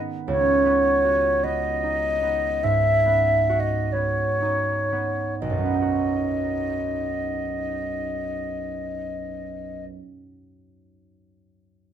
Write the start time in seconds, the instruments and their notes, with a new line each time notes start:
Already playing: harp D#3 B3 D#4 G#4
0.27 harp C#2, flute C#5
0.65 harp B3
1.05 harp F#4
1.43 harp B3, flute D#5
1.83 harp D#4
2.22 harp B3
2.63 harp G#2, flute E5
3.06 harp B3
3.49 harp F#4
3.59 flute D#5
3.92 harp B3, flute C#5
4.42 harp D#4
4.92 harp B3
5.39 harp B1, flute D#5
5.50 harp F#2
5.58 harp F#3
5.65 harp B3
5.74 harp D#4
5.81 harp F#4